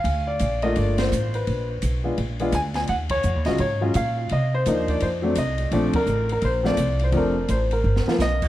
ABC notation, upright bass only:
X:1
M:4/4
L:1/8
Q:"Swing" 1/4=169
K:Bb
V:1 name="Upright bass" clef=bass
D,,2 B,,,2 G,,,2 A,,,2 | B,,,2 _C,,2 B,,,2 D,,2 | E,,2 (3F,, E,, _D,, _A,,2 B,,2 | C,2 E,,2 F,,2 C,,2 |
B,,, z A,,,2 B,,,2 C,,2 | F,,,2 A,,,2 G,,, z =B,,,2 |]